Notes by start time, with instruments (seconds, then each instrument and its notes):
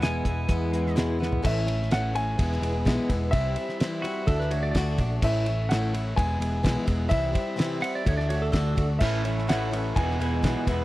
Already playing: picked electric bass E1, clean electric guitar E2 E3 E4, tonewheel organ G#3 B3 E4 G#4
0.01 steel-string acoustic guitar E2 B2 E3 G#3 B3 E4, pedal steel guitar G#5, snare, closed hi-hat
0.25 picked electric bass E1, steel-string acoustic guitar E3 G#3 B3 E4, kick, closed hi-hat
0.49 picked electric bass E2, steel-string acoustic guitar E3 G#3 B3 E4, kick, closed hi-hat
0.73 steel-string acoustic guitar E3 G#3 B3 E4, closed hi-hat
0.87 snare
0.96 steel-string acoustic guitar E2 B2 E3 G#3 B3 E4, snare, closed hi-hat
1.19 steel-string acoustic guitar E3 G#3 B3 E4, snare
1.32 floor tom
1.42 picked electric bass A1, steel-string acoustic guitar A2 E3 A3 C#4 E4, tonewheel organ A3 C#4 E4 A4, grand piano E5, kick, crash
1.66 steel-string acoustic guitar A3 C#4 E4, ride
1.82 snare
1.91 steel-string acoustic guitar A2 E3 A3 C#4 E4, grand piano F#5, snare, ride
2.14 steel-string acoustic guitar A3 C#4 E4, grand piano G#5, ride
2.37 picked electric bass E1, steel-string acoustic guitar E3 G#3 B3 E4, tonewheel organ B3 E4 G#4 B4, kick, ride
2.52 snare
2.61 picked electric bass E1, steel-string acoustic guitar E3 G#3 B3 E4, ride
2.85 picked electric bass B1, steel-string acoustic guitar E2 B2 E3 G#3 B3 E4, kick, snare, ride
3.09 picked electric bass E1, steel-string acoustic guitar E3 G#3 B3 E4, kick, ride
3.31 picked electric bass C2, steel-string acoustic guitar C3 E3 G3 C4 E4, tonewheel organ C4 E4 G4 C5, grand piano E5, kick, ride
3.56 steel-string acoustic guitar G3 C4 E4, ride
3.69 snare
3.80 steel-string acoustic guitar C3 E3 G3 C4 E4, snare, ride
4.02 steel-string acoustic guitar C4 E4, pedal steel guitar F#4, ride
4.06 steel-string acoustic guitar G3
4.25 picked electric bass D2, steel-string acoustic guitar D3 A3 D4 F#4, tonewheel organ D4 F#4 A4 D5, pedal steel guitar A4, kick, ride
4.40 pedal steel guitar B4, snare
4.51 steel-string acoustic guitar A3 D4 F#4, pedal steel guitar C#5, ride
4.63 pedal steel guitar D5
4.71 picked electric bass D2, steel-string acoustic guitar D3, pedal steel guitar D5, kick, ride
4.76 steel-string acoustic guitar A3 D4 F#4, snare
4.98 picked electric bass A#1, steel-string acoustic guitar A3 D4 F#4, kick, ride
5.21 picked electric bass A1, steel-string acoustic guitar A2 E3 A3 C#4 E4, tonewheel organ C#4 E4 A4 C#5, grand piano E5, kick, crash
5.46 steel-string acoustic guitar A3 C#4 E4, ride
5.69 steel-string acoustic guitar A2 E3 A3 C#4 E4, grand piano F#5, snare, ride
5.94 steel-string acoustic guitar A3 C#4 E4, ride
6.14 picked electric bass E1, steel-string acoustic guitar E3 G#3 B3 E4, tonewheel organ B3 E4 G#4 B4, grand piano G#5, kick
6.19 ride
6.38 picked electric bass E1, steel-string acoustic guitar E3 G#3 B3 E4, ride
6.63 picked electric bass B1, steel-string acoustic guitar E2 B2 E3 G#3 B3 E4, kick, snare, ride
6.86 picked electric bass E1, steel-string acoustic guitar E3 G#3 B3 E4, kick, ride
7.08 picked electric bass C2, steel-string acoustic guitar C3 E3 G3 C4 E4, tonewheel organ C4 E4 G4 C5, grand piano E5, kick, ride
7.32 steel-string acoustic guitar G3 C4 E4, kick, ride
7.56 steel-string acoustic guitar C3 E3 G3 C4 E4, snare, ride
7.80 steel-string acoustic guitar G3 C4 E4, pedal steel guitar F#5, ride
7.95 pedal steel guitar D5
8.03 picked electric bass D2, steel-string acoustic guitar D3 A3 D4 F#4, tonewheel organ D4 F#4 A4 D5, kick, ride
8.08 pedal steel guitar C#5
8.17 pedal steel guitar D5, snare
8.29 steel-string acoustic guitar A3 D4 F#4, pedal steel guitar C#5, ride
8.42 pedal steel guitar A4
8.52 picked electric bass D2, steel-string acoustic guitar D3 A3 D4 F#4, pedal steel guitar A4, kick, snare, ride
8.76 picked electric bass D2, steel-string acoustic guitar A3 D4 F#4, kick, ride
8.99 picked electric bass A1, steel-string acoustic guitar A2 E3 A3 C#4 E4, tonewheel organ C#4 E4 A4 C#5, grand piano E5, kick, crash
9.23 steel-string acoustic guitar A3 C#4 E4, ride
9.39 snare
9.48 steel-string acoustic guitar A2 E3 A3 C#4 E4, grand piano F#5, snare, ride
9.71 steel-string acoustic guitar A3 C#4 E4, ride
9.95 picked electric bass E1, clean electric guitar E2 B2, steel-string acoustic guitar E3 G#3 B3 E4, tonewheel organ B3 E4 G#4 B4, grand piano G#5, kick, ride
10.11 snare
10.19 picked electric bass E1, clean electric guitar E2 B2, steel-string acoustic guitar E3 G#3 B3 E4, ride
10.43 picked electric bass B1, steel-string acoustic guitar E2 B2 E3 G#3 B3 E4, kick, snare, ride
10.66 picked electric bass E1, steel-string acoustic guitar E3 G#3 B3 E4, kick, ride